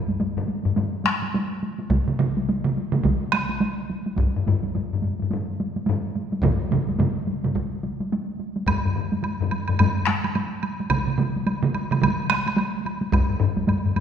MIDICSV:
0, 0, Header, 1, 3, 480
1, 0, Start_track
1, 0, Tempo, 566572
1, 1619, Time_signature, 4, 2, 24, 8
1, 5929, Tempo, 556586
1, 11970, End_track
2, 0, Start_track
2, 0, Title_t, "Taiko and cinematic ensemble drums"
2, 71, Note_on_c, 9, 48, 59
2, 156, Note_off_c, 9, 48, 0
2, 168, Note_on_c, 9, 48, 71
2, 253, Note_off_c, 9, 48, 0
2, 314, Note_on_c, 9, 45, 89
2, 399, Note_off_c, 9, 45, 0
2, 406, Note_on_c, 9, 48, 60
2, 490, Note_off_c, 9, 48, 0
2, 551, Note_on_c, 9, 48, 47
2, 552, Note_on_c, 9, 45, 78
2, 636, Note_off_c, 9, 48, 0
2, 637, Note_off_c, 9, 45, 0
2, 646, Note_on_c, 9, 48, 67
2, 651, Note_on_c, 9, 45, 90
2, 730, Note_off_c, 9, 48, 0
2, 736, Note_off_c, 9, 45, 0
2, 881, Note_on_c, 9, 48, 64
2, 895, Note_on_c, 9, 37, 76
2, 966, Note_off_c, 9, 48, 0
2, 980, Note_off_c, 9, 37, 0
2, 1035, Note_on_c, 9, 48, 52
2, 1120, Note_off_c, 9, 48, 0
2, 1138, Note_on_c, 9, 48, 77
2, 1223, Note_off_c, 9, 48, 0
2, 1378, Note_on_c, 9, 48, 51
2, 1463, Note_off_c, 9, 48, 0
2, 1519, Note_on_c, 9, 48, 57
2, 1603, Note_off_c, 9, 48, 0
2, 1611, Note_on_c, 9, 41, 85
2, 1615, Note_on_c, 9, 48, 75
2, 1616, Note_on_c, 9, 47, 64
2, 1696, Note_off_c, 9, 41, 0
2, 1699, Note_off_c, 9, 48, 0
2, 1700, Note_off_c, 9, 47, 0
2, 1760, Note_on_c, 9, 47, 68
2, 1845, Note_off_c, 9, 47, 0
2, 1856, Note_on_c, 9, 47, 103
2, 1860, Note_on_c, 9, 48, 66
2, 1941, Note_off_c, 9, 47, 0
2, 1945, Note_off_c, 9, 48, 0
2, 2007, Note_on_c, 9, 48, 60
2, 2092, Note_off_c, 9, 48, 0
2, 2107, Note_on_c, 9, 48, 70
2, 2192, Note_off_c, 9, 48, 0
2, 2240, Note_on_c, 9, 47, 87
2, 2325, Note_off_c, 9, 47, 0
2, 2348, Note_on_c, 9, 48, 55
2, 2433, Note_off_c, 9, 48, 0
2, 2475, Note_on_c, 9, 47, 88
2, 2487, Note_on_c, 9, 48, 50
2, 2560, Note_off_c, 9, 47, 0
2, 2572, Note_off_c, 9, 48, 0
2, 2572, Note_on_c, 9, 47, 88
2, 2582, Note_on_c, 9, 41, 77
2, 2586, Note_on_c, 9, 48, 75
2, 2656, Note_off_c, 9, 47, 0
2, 2667, Note_off_c, 9, 41, 0
2, 2671, Note_off_c, 9, 48, 0
2, 2813, Note_on_c, 9, 37, 75
2, 2822, Note_on_c, 9, 48, 65
2, 2898, Note_off_c, 9, 37, 0
2, 2906, Note_off_c, 9, 48, 0
2, 2961, Note_on_c, 9, 48, 55
2, 3046, Note_off_c, 9, 48, 0
2, 3058, Note_on_c, 9, 48, 75
2, 3143, Note_off_c, 9, 48, 0
2, 3301, Note_on_c, 9, 48, 55
2, 3385, Note_off_c, 9, 48, 0
2, 3440, Note_on_c, 9, 48, 53
2, 3525, Note_off_c, 9, 48, 0
2, 3528, Note_on_c, 9, 48, 58
2, 3539, Note_on_c, 9, 41, 96
2, 3548, Note_on_c, 9, 45, 63
2, 3613, Note_off_c, 9, 48, 0
2, 3624, Note_off_c, 9, 41, 0
2, 3633, Note_off_c, 9, 45, 0
2, 3698, Note_on_c, 9, 45, 66
2, 3783, Note_off_c, 9, 45, 0
2, 3783, Note_on_c, 9, 48, 58
2, 3792, Note_on_c, 9, 45, 100
2, 3868, Note_off_c, 9, 48, 0
2, 3877, Note_off_c, 9, 45, 0
2, 3921, Note_on_c, 9, 48, 53
2, 4006, Note_off_c, 9, 48, 0
2, 4023, Note_on_c, 9, 48, 63
2, 4032, Note_on_c, 9, 45, 64
2, 4108, Note_off_c, 9, 48, 0
2, 4116, Note_off_c, 9, 45, 0
2, 4179, Note_on_c, 9, 45, 71
2, 4254, Note_on_c, 9, 48, 55
2, 4263, Note_off_c, 9, 45, 0
2, 4270, Note_on_c, 9, 45, 62
2, 4339, Note_off_c, 9, 48, 0
2, 4355, Note_off_c, 9, 45, 0
2, 4400, Note_on_c, 9, 48, 45
2, 4424, Note_on_c, 9, 45, 65
2, 4485, Note_off_c, 9, 48, 0
2, 4498, Note_on_c, 9, 48, 65
2, 4509, Note_off_c, 9, 45, 0
2, 4514, Note_on_c, 9, 45, 90
2, 4582, Note_off_c, 9, 48, 0
2, 4599, Note_off_c, 9, 45, 0
2, 4744, Note_on_c, 9, 48, 58
2, 4829, Note_off_c, 9, 48, 0
2, 4881, Note_on_c, 9, 48, 55
2, 4966, Note_off_c, 9, 48, 0
2, 4967, Note_on_c, 9, 48, 72
2, 4989, Note_on_c, 9, 45, 103
2, 5051, Note_off_c, 9, 48, 0
2, 5074, Note_off_c, 9, 45, 0
2, 5213, Note_on_c, 9, 48, 54
2, 5298, Note_off_c, 9, 48, 0
2, 5356, Note_on_c, 9, 48, 54
2, 5437, Note_on_c, 9, 41, 97
2, 5441, Note_off_c, 9, 48, 0
2, 5452, Note_on_c, 9, 47, 98
2, 5457, Note_on_c, 9, 48, 76
2, 5460, Note_on_c, 9, 45, 105
2, 5522, Note_off_c, 9, 41, 0
2, 5536, Note_off_c, 9, 47, 0
2, 5542, Note_off_c, 9, 48, 0
2, 5545, Note_off_c, 9, 45, 0
2, 5692, Note_on_c, 9, 48, 63
2, 5693, Note_on_c, 9, 45, 90
2, 5693, Note_on_c, 9, 47, 95
2, 5777, Note_off_c, 9, 48, 0
2, 5778, Note_off_c, 9, 45, 0
2, 5778, Note_off_c, 9, 47, 0
2, 5834, Note_on_c, 9, 48, 64
2, 5919, Note_off_c, 9, 48, 0
2, 5919, Note_on_c, 9, 48, 69
2, 5927, Note_on_c, 9, 45, 86
2, 5929, Note_on_c, 9, 47, 90
2, 6005, Note_off_c, 9, 48, 0
2, 6013, Note_off_c, 9, 45, 0
2, 6015, Note_off_c, 9, 47, 0
2, 6164, Note_on_c, 9, 48, 59
2, 6250, Note_off_c, 9, 48, 0
2, 6308, Note_on_c, 9, 48, 47
2, 6314, Note_on_c, 9, 47, 65
2, 6316, Note_on_c, 9, 45, 64
2, 6394, Note_off_c, 9, 48, 0
2, 6400, Note_off_c, 9, 47, 0
2, 6403, Note_off_c, 9, 45, 0
2, 6406, Note_on_c, 9, 41, 73
2, 6411, Note_on_c, 9, 48, 73
2, 6492, Note_off_c, 9, 41, 0
2, 6497, Note_off_c, 9, 48, 0
2, 6649, Note_on_c, 9, 48, 61
2, 6735, Note_off_c, 9, 48, 0
2, 6796, Note_on_c, 9, 48, 57
2, 6882, Note_off_c, 9, 48, 0
2, 6900, Note_on_c, 9, 48, 71
2, 6986, Note_off_c, 9, 48, 0
2, 7136, Note_on_c, 9, 48, 46
2, 7222, Note_off_c, 9, 48, 0
2, 7274, Note_on_c, 9, 48, 51
2, 7360, Note_off_c, 9, 48, 0
2, 7366, Note_on_c, 9, 41, 95
2, 7371, Note_on_c, 9, 48, 70
2, 7383, Note_on_c, 9, 45, 61
2, 7453, Note_off_c, 9, 41, 0
2, 7457, Note_off_c, 9, 48, 0
2, 7469, Note_off_c, 9, 45, 0
2, 7526, Note_on_c, 9, 45, 68
2, 7612, Note_off_c, 9, 45, 0
2, 7624, Note_on_c, 9, 45, 89
2, 7711, Note_off_c, 9, 45, 0
2, 7758, Note_on_c, 9, 48, 63
2, 7844, Note_off_c, 9, 48, 0
2, 7851, Note_on_c, 9, 48, 69
2, 7937, Note_off_c, 9, 48, 0
2, 8006, Note_on_c, 9, 45, 92
2, 8092, Note_off_c, 9, 45, 0
2, 8102, Note_on_c, 9, 48, 53
2, 8188, Note_off_c, 9, 48, 0
2, 8248, Note_on_c, 9, 45, 86
2, 8250, Note_on_c, 9, 48, 44
2, 8334, Note_off_c, 9, 45, 0
2, 8336, Note_off_c, 9, 48, 0
2, 8342, Note_on_c, 9, 45, 94
2, 8347, Note_on_c, 9, 48, 73
2, 8428, Note_off_c, 9, 45, 0
2, 8433, Note_off_c, 9, 48, 0
2, 8574, Note_on_c, 9, 37, 74
2, 8583, Note_on_c, 9, 48, 57
2, 8660, Note_off_c, 9, 37, 0
2, 8669, Note_off_c, 9, 48, 0
2, 8725, Note_on_c, 9, 48, 51
2, 8811, Note_off_c, 9, 48, 0
2, 8823, Note_on_c, 9, 48, 67
2, 8910, Note_off_c, 9, 48, 0
2, 9061, Note_on_c, 9, 48, 49
2, 9148, Note_off_c, 9, 48, 0
2, 9208, Note_on_c, 9, 48, 53
2, 9294, Note_off_c, 9, 48, 0
2, 9297, Note_on_c, 9, 41, 90
2, 9300, Note_on_c, 9, 47, 71
2, 9300, Note_on_c, 9, 48, 65
2, 9383, Note_off_c, 9, 41, 0
2, 9386, Note_off_c, 9, 47, 0
2, 9386, Note_off_c, 9, 48, 0
2, 9442, Note_on_c, 9, 47, 62
2, 9529, Note_off_c, 9, 47, 0
2, 9534, Note_on_c, 9, 47, 88
2, 9548, Note_on_c, 9, 48, 64
2, 9620, Note_off_c, 9, 47, 0
2, 9635, Note_off_c, 9, 48, 0
2, 9696, Note_on_c, 9, 48, 55
2, 9781, Note_off_c, 9, 48, 0
2, 9781, Note_on_c, 9, 48, 65
2, 9867, Note_off_c, 9, 48, 0
2, 9920, Note_on_c, 9, 47, 98
2, 10007, Note_off_c, 9, 47, 0
2, 10024, Note_on_c, 9, 48, 58
2, 10110, Note_off_c, 9, 48, 0
2, 10166, Note_on_c, 9, 47, 91
2, 10177, Note_on_c, 9, 48, 47
2, 10253, Note_off_c, 9, 47, 0
2, 10256, Note_on_c, 9, 41, 73
2, 10257, Note_on_c, 9, 47, 84
2, 10264, Note_off_c, 9, 48, 0
2, 10270, Note_on_c, 9, 48, 76
2, 10342, Note_off_c, 9, 41, 0
2, 10343, Note_off_c, 9, 47, 0
2, 10356, Note_off_c, 9, 48, 0
2, 10498, Note_on_c, 9, 37, 77
2, 10499, Note_on_c, 9, 48, 61
2, 10585, Note_off_c, 9, 37, 0
2, 10585, Note_off_c, 9, 48, 0
2, 10643, Note_on_c, 9, 48, 61
2, 10729, Note_off_c, 9, 48, 0
2, 10730, Note_on_c, 9, 48, 85
2, 10816, Note_off_c, 9, 48, 0
2, 10979, Note_on_c, 9, 48, 55
2, 11065, Note_off_c, 9, 48, 0
2, 11115, Note_on_c, 9, 48, 63
2, 11201, Note_off_c, 9, 48, 0
2, 11212, Note_on_c, 9, 41, 107
2, 11213, Note_on_c, 9, 48, 85
2, 11216, Note_on_c, 9, 45, 60
2, 11299, Note_off_c, 9, 41, 0
2, 11299, Note_off_c, 9, 48, 0
2, 11302, Note_off_c, 9, 45, 0
2, 11355, Note_on_c, 9, 45, 63
2, 11442, Note_off_c, 9, 45, 0
2, 11453, Note_on_c, 9, 45, 101
2, 11539, Note_off_c, 9, 45, 0
2, 11592, Note_on_c, 9, 48, 65
2, 11678, Note_off_c, 9, 48, 0
2, 11690, Note_on_c, 9, 48, 80
2, 11694, Note_on_c, 9, 45, 65
2, 11776, Note_off_c, 9, 48, 0
2, 11781, Note_off_c, 9, 45, 0
2, 11844, Note_on_c, 9, 45, 65
2, 11930, Note_off_c, 9, 45, 0
2, 11931, Note_on_c, 9, 45, 67
2, 11934, Note_on_c, 9, 48, 58
2, 11970, Note_off_c, 9, 45, 0
2, 11970, Note_off_c, 9, 48, 0
2, 11970, End_track
3, 0, Start_track
3, 0, Title_t, "Drums"
3, 7376, Note_on_c, 9, 76, 56
3, 7463, Note_off_c, 9, 76, 0
3, 7861, Note_on_c, 9, 76, 38
3, 7947, Note_off_c, 9, 76, 0
3, 8097, Note_on_c, 9, 76, 42
3, 8184, Note_off_c, 9, 76, 0
3, 8238, Note_on_c, 9, 76, 38
3, 8324, Note_off_c, 9, 76, 0
3, 8338, Note_on_c, 9, 76, 55
3, 8424, Note_off_c, 9, 76, 0
3, 8727, Note_on_c, 9, 76, 37
3, 8813, Note_off_c, 9, 76, 0
3, 8822, Note_on_c, 9, 76, 40
3, 8908, Note_off_c, 9, 76, 0
3, 9059, Note_on_c, 9, 76, 40
3, 9146, Note_off_c, 9, 76, 0
3, 9293, Note_on_c, 9, 76, 56
3, 9380, Note_off_c, 9, 76, 0
3, 9783, Note_on_c, 9, 76, 40
3, 9869, Note_off_c, 9, 76, 0
3, 10022, Note_on_c, 9, 76, 41
3, 10109, Note_off_c, 9, 76, 0
3, 10174, Note_on_c, 9, 76, 41
3, 10260, Note_off_c, 9, 76, 0
3, 10273, Note_on_c, 9, 76, 53
3, 10359, Note_off_c, 9, 76, 0
3, 10653, Note_on_c, 9, 76, 42
3, 10739, Note_off_c, 9, 76, 0
3, 10745, Note_on_c, 9, 76, 38
3, 10832, Note_off_c, 9, 76, 0
3, 10987, Note_on_c, 9, 76, 37
3, 11073, Note_off_c, 9, 76, 0
3, 11221, Note_on_c, 9, 76, 48
3, 11307, Note_off_c, 9, 76, 0
3, 11698, Note_on_c, 9, 76, 35
3, 11785, Note_off_c, 9, 76, 0
3, 11936, Note_on_c, 9, 76, 36
3, 11970, Note_off_c, 9, 76, 0
3, 11970, End_track
0, 0, End_of_file